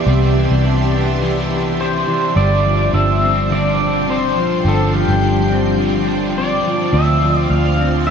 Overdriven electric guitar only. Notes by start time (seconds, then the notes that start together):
0.06 C3 E3 B3 D4
0.92 B3 D4
0.96 E3
1.20 C3 E3 B3
1.25 D4
1.77 C3 E3
1.82 D4
2.35 G2 D3 F3 C4 D4
3.21 C4 D4
3.25 F3
3.49 D3 F3 C4
3.54 D4
4.07 D3 F3
4.11 C4 D4
4.63 G2 D3
4.67 F3 C4 D4
5.77 D3 F3 C4
5.82 D4
6.34 D3 F3 C4
6.39 D4
6.91 D3 F3
6.97 C4
8.07 D3